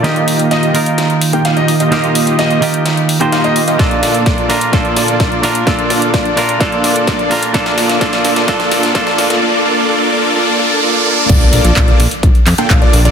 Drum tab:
CC |----------------|----------------|----------------|----------------|
HH |xxoxxxoxxxoxxxox|xxoxxxoxxxoxxxox|xxoxxxoxxxoxxxox|xxoxxxoxxxoxxxox|
CP |----------------|----------------|----------------|----------------|
SD |o---o---o---o---|o---o---o---o---|o-o-o-o-o-o-o-o-|o-o-o-o-o-o-o-o-|
BD |----------------|----------------|o---o---o---o---|o---o---o---o---|

CC |----------------|----------------|x---------------|
HH |xxoxxxoxxxoxxxox|----------------|xxoxxxoxxxoxxxox|
CP |----------------|----------------|----x-----x-x---|
SD |oooooooooooooooo|----------------|----------------|
BD |o---o---o---o---|----------------|o---o---o---o---|